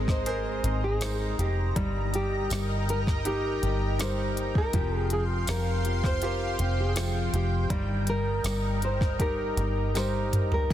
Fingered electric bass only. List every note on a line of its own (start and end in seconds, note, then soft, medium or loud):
0.00 0.60 G#1 medium
0.64 1.34 G#1 medium
1.38 1.73 F1 medium
1.76 2.47 G1 medium
2.51 3.59 G1 loud
3.63 4.70 G1 medium
4.74 5.44 F1 medium
5.48 6.56 F1 loud
6.59 7.29 F1 medium
7.33 7.68 F1 medium
7.70 8.40 G1 loud
8.44 9.53 G1 medium
9.57 10.66 G1 medium